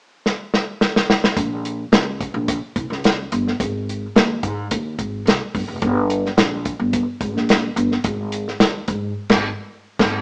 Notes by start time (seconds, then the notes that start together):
0.26 snare
0.54 snare
0.81 snare
0.96 snare
1.10 snare
1.24 snare
1.37 A#1, kick, closed hi-hat
1.65 closed hi-hat
1.92 C#2, snare, closed hi-hat
2.21 kick, closed hi-hat
2.34 A#1
2.48 kick, closed hi-hat
2.76 C2, kick, closed hi-hat
2.90 C#2, snare
3.04 snare, closed hi-hat
3.32 G1, closed hi-hat
3.48 snare
3.60 G#1, kick, closed hi-hat
3.89 closed hi-hat
4.16 D#2, snare, closed hi-hat
4.43 G#2, kick, closed hi-hat
4.71 D#2, kick, closed hi-hat
4.98 G#1, kick, closed hi-hat
5.26 C2, snare, closed hi-hat
5.55 G1, kick, open hi-hat
5.68 F1
5.82 G1, kick, closed hi-hat
6.10 closed hi-hat
6.26 snare
6.37 A#1, snare, closed hi-hat
6.65 kick, closed hi-hat
6.79 G1
6.93 kick, closed hi-hat
7.21 G#1, kick, closed hi-hat
7.35 A#1, snare
7.49 snare, closed hi-hat
7.76 G1, closed hi-hat
7.92 snare
8.04 G#1, kick, closed hi-hat
8.32 closed hi-hat
8.48 snare
8.60 D#2, snare, closed hi-hat
8.88 G#2, kick, closed hi-hat
9.29 G#1, kick, snare, crash
9.99 G#1, kick, snare, crash